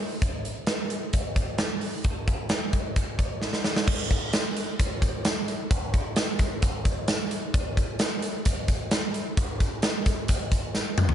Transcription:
0.22 kick loud
0.22 closed hi-hat loud
0.45 closed hi-hat medium
0.67 snare loud
0.67 closed hi-hat medium
0.90 closed hi-hat medium
1.13 kick loud
1.13 closed hi-hat loud
1.36 kick medium
1.36 closed hi-hat medium
1.58 snare loud
1.58 closed hi-hat medium
1.81 open hi-hat medium
2.04 kick loud
2.04 closed hi-hat loud
2.28 kick medium
2.28 closed hi-hat medium
2.49 snare loud
2.49 closed hi-hat medium
2.73 kick medium
2.73 closed hi-hat medium
2.96 kick loud
2.96 closed hi-hat loud
3.19 kick medium
3.19 closed hi-hat medium
3.42 snare medium
3.53 snare medium
3.64 snare medium
3.76 snare medium
3.88 kick loud
3.88 crash loud
3.88 tambourine soft
4.11 kick loud
4.11 closed hi-hat medium
4.11 tambourine soft
4.33 snare loud
4.33 closed hi-hat medium
4.33 tambourine medium
4.57 closed hi-hat medium
4.57 tambourine medium
4.79 kick loud
4.79 closed hi-hat loud
4.79 tambourine medium
5.02 kick loud
5.02 closed hi-hat medium
5.02 tambourine medium
5.25 snare loud
5.25 closed hi-hat medium
5.25 tambourine loud
5.48 closed hi-hat medium
5.48 tambourine medium
5.71 kick loud
5.71 closed hi-hat loud
5.94 kick medium
5.94 closed hi-hat medium
6.16 snare loud
6.16 closed hi-hat medium
6.16 tambourine loud
6.39 kick loud
6.39 closed hi-hat medium
6.39 tambourine medium
6.62 kick loud
6.62 closed hi-hat loud
6.62 tambourine medium
6.85 kick medium
6.85 closed hi-hat medium
6.85 tambourine soft
7.08 snare loud
7.08 closed hi-hat medium
7.08 tambourine loud
7.31 closed hi-hat medium
7.31 tambourine medium
7.54 kick loud
7.54 closed hi-hat loud
7.54 tambourine soft
7.77 kick medium
7.77 closed hi-hat medium
7.77 tambourine soft
7.99 snare loud
7.99 closed hi-hat medium
7.99 tambourine loud
8.22 closed hi-hat medium
8.22 tambourine medium
8.45 kick loud
8.45 closed hi-hat loud
8.45 tambourine medium
8.68 kick medium
8.68 closed hi-hat medium
8.68 tambourine medium
8.91 snare loud
8.91 closed hi-hat medium
8.91 tambourine loud
9.14 closed hi-hat medium
9.14 tambourine medium
9.37 kick loud
9.37 closed hi-hat loud
9.60 kick medium
9.60 closed hi-hat medium
9.60 tambourine soft
9.82 snare loud
9.82 closed hi-hat medium
9.82 tambourine medium
10.06 kick loud
10.06 closed hi-hat medium
10.06 tambourine medium
10.28 kick loud
10.28 closed hi-hat loud
10.28 tambourine medium
10.51 kick medium
10.51 closed hi-hat medium
10.51 tambourine medium
10.75 snare medium
10.75 tambourine loud
10.98 mid tom loud
10.98 tambourine medium
11.09 floor tom loud

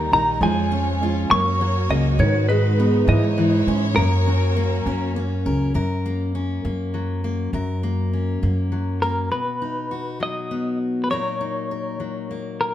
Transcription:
0.00 0.39 D#3 medium
0.00 0.48 D#3 medium
0.00 0.38 G3 medium
0.00 0.41 G3 medium
0.00 0.39 A#3 medium
0.00 0.42 A#3 medium
0.00 0.41 D#4 medium
0.00 0.39 A#4 medium
0.00 0.12 A#5 loud
0.12 0.40 A#1 medium
0.12 0.48 D#4 medium
0.12 0.39 D#4 medium
0.12 0.43 A#5 medium
0.41 1.26 F2 medium
0.41 1.27 F3 medium
0.41 1.00 G#3 medium
0.41 1.30 G#3 medium
0.41 2.18 C#4 medium
0.41 1.30 F4 medium
0.41 1.30 C#5 medium
0.41 1.31 G#5 loud
0.71 1.36 C#4 medium
0.71 1.27 C#4 medium
1.01 1.31 G#3 medium
1.01 1.28 F4 medium
1.30 1.87 F#2 medium
1.30 2.19 F#2 medium
1.30 1.59 A#3 medium
1.30 2.19 A#3 medium
1.30 3.07 F#4 medium
1.30 2.19 C#5 medium
1.30 1.92 C#6 loud
1.60 2.16 F#3 medium
1.60 2.25 A#3 medium
1.90 2.18 C#2 medium
1.90 2.16 A#3 medium
1.90 2.25 C#4 medium
1.90 2.21 D#5 medium
2.19 3.04 G#2 loud
2.19 3.04 G#2 medium
2.19 3.08 D#3 medium
2.19 3.96 G#3 medium
2.19 3.97 D#4 medium
2.19 3.09 B4 medium
2.19 2.47 C#5 medium
2.49 3.05 G#3 medium
2.49 3.14 D#4 medium
2.49 3.10 B4 medium
2.78 3.14 B3 medium
2.78 3.05 B3 medium
3.08 3.93 G#2 medium
3.08 3.64 G#2 loud
3.08 3.37 E3 medium
3.08 3.96 E4 medium
3.08 5.72 C#5 medium
3.08 3.64 D#5 medium
3.38 3.97 E3 medium
3.38 4.03 E3 medium
3.67 3.95 G#2 medium
3.67 3.97 G#3 medium
3.67 4.56 C#4 medium
3.96 4.82 F#2 loud
3.96 5.73 F#2 medium
3.96 4.54 A#3 medium
3.96 5.74 A#3 medium
3.96 5.74 C#4 medium
3.96 5.74 F#4 medium
3.96 5.11 A#4 loud
4.26 5.72 F#3 medium
4.26 4.84 C#4 medium
4.56 5.14 A#3 medium
4.56 5.72 A#3 medium
4.86 5.42 F#2 medium
4.86 5.44 C#4 medium
4.86 5.15 C#4 medium
5.16 5.81 A#3 medium
5.16 6.34 C#4 medium
5.46 5.74 C#2 medium
5.46 5.81 C#4 medium
5.46 5.72 A#4 medium
5.74 7.52 F#2 medium
5.74 6.60 F#2 medium
5.74 7.50 A#4 medium
6.06 6.64 A#3 medium
6.35 8.12 C#4 medium
6.65 7.50 F#2 medium
6.65 7.23 A#3 medium
6.94 8.71 F#3 medium
7.24 7.50 A#3 medium
7.53 8.38 F#2 medium
7.53 9.32 F#2 medium
7.53 9.29 A#4 medium
7.83 8.42 A#3 medium
8.13 9.32 C#4 medium
8.43 9.28 F#2 medium
8.43 9.01 A#3 medium
8.72 9.28 F#3 medium
9.02 9.29 A#3 medium
9.02 9.30 A#4 medium
9.31 11.11 B2 medium
9.31 10.17 B4 medium
9.62 11.07 D#4 soft
9.91 11.11 F#4 medium
10.20 11.07 F#3 soft
10.20 10.78 D#5 medium
10.51 11.07 B3 soft
11.04 11.10 B4 medium
11.10 12.74 A#2 medium
11.10 11.99 F#3 soft
11.10 12.29 A#3 soft
11.10 11.39 D#4 soft
11.10 11.70 A#4 medium
11.10 12.56 C#5 medium
11.41 12.74 D#4 soft
11.71 12.74 A#4 medium
12.00 12.74 F#3 medium
12.31 12.74 A#3 soft
12.61 12.74 A#4 medium

